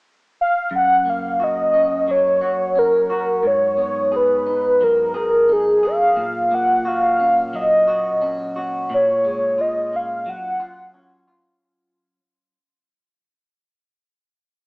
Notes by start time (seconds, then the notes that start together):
0.41 F5
0.71 F#2
0.75 F#5
1.05 A#3
1.09 F5
1.40 F#4 D#5
1.74 C#4
2.08 F#3 C#5
2.41 F#4
2.76 C#4 A#4
3.10 F#4
3.43 G#2 C#5
3.77 B3
4.12 G#4
4.16 B4
4.46 D#4
4.81 F#3 A#4
5.14 G#4
5.49 D#4 G#4
5.83 G#4 F5
6.16 A#2
6.51 A#3 F#5
6.85 F#4 F5
7.20 C#4
7.53 F#3 D#5
7.88 F#4
8.22 C#4
8.56 F#4
8.90 A#2
8.94 C#5
9.24 G#3
9.58 F4 D#5
9.92 C#4 F5
10.26 F#3 F#5
10.60 F4
10.94 C#4
11.28 F4